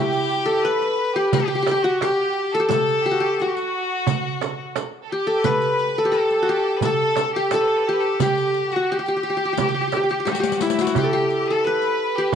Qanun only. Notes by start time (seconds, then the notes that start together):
Already playing: E4 G4
0.46 A4
0.65 B4
1.16 G4
1.34 G4
1.40 G4
1.48 G4
1.55 G4
1.63 G4
1.71 G4
1.84 F#4
2.02 G4
2.55 A4
2.60 G4
2.69 A4
3.06 G4
3.11 F#4
3.20 G4
3.42 F#4
5.12 G4
5.27 A4
5.45 B4
5.98 A4
6.05 G4
6.12 A4
6.43 F#4
6.49 G4
6.85 A4
7.36 G4
7.54 A4
7.89 G4
8.22 G4
8.76 F#4
8.92 G4
8.99 G4
9.08 G4
9.17 G4
9.23 G4
9.30 G4
9.37 G4
9.45 G4
9.53 G4
9.60 G4
9.69 G4
9.74 G4
9.81 G4
9.88 G4
9.97 G4
10.04 G4
10.11 G4
10.20 G4
10.25 G4
10.32 G4
10.40 G4
10.62 E4
10.81 F#4
10.98 G4
11.04 A4
11.13 G4
11.51 A4
11.67 B4
12.18 G4